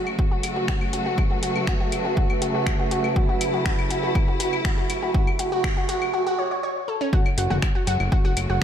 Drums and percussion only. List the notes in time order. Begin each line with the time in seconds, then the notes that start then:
0.07 claves
0.19 kick
0.43 closed hi-hat, claves
0.56 mid tom
0.68 finger snap, kick
0.81 claves
0.93 closed hi-hat
1.18 kick, claves
1.31 mid tom
1.43 closed hi-hat
1.56 claves
1.67 finger snap, kick
1.92 closed hi-hat, claves
2.05 mid tom
2.17 kick
2.30 claves
2.42 closed hi-hat
2.67 finger snap, kick, claves
2.79 mid tom
2.91 closed hi-hat
3.04 claves
3.16 kick
3.41 closed hi-hat, claves
3.54 mid tom
3.66 finger snap, kick
3.79 claves
3.91 closed hi-hat
4.15 kick, claves
4.28 mid tom
4.40 closed hi-hat
4.53 claves
4.65 finger snap, kick
4.90 closed hi-hat, claves
5.02 mid tom
5.14 kick
5.27 claves
5.39 closed hi-hat
5.64 finger snap, kick, claves
5.77 mid tom
5.89 closed hi-hat
6.02 claves
7.13 kick
7.26 claves
7.38 closed hi-hat
7.51 mid tom
7.62 finger snap, kick, claves
7.87 closed hi-hat
8.00 claves
8.12 kick
8.37 closed hi-hat, claves